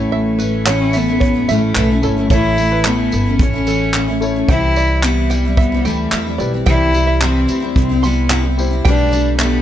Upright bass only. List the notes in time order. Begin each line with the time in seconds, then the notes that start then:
Already playing: A1
1.49 A1
1.76 B1
2.03 G1
2.31 A1
3.13 G1
3.39 A1
4.48 C2
5.85 D2
6.12 E2
6.40 B1
6.67 C2
7.49 D2
7.76 C2
8.85 B1